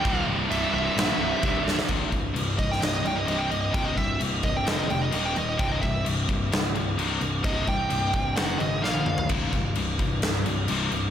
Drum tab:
CC |x---x---x---x---|x-x-x-x-x-x-x-x-|x-x-x-x-x-x-x-x-|x-x-x-x-x-x-x-x-|
SD |--------o-----oo|-------oo-------|--------o-------|--------o-------|
T1 |----------------|----------------|----------------|----------------|
T2 |----------------|----------------|----------------|----------------|
FT |----------------|----------------|----------------|----------------|
BD |o-----------o---|o-o---o---------|o-o---o---------|o-o---o---------|

CC |x-x-x-x-x-x-----|x-x-x-x-x-x-x-x-|
SD |--------o---o---|--------o-------|
T1 |-------------o--|----------------|
T2 |--------------o-|----------------|
FT |---------------o|----------------|
BD |o-o---o---------|o-o---o---------|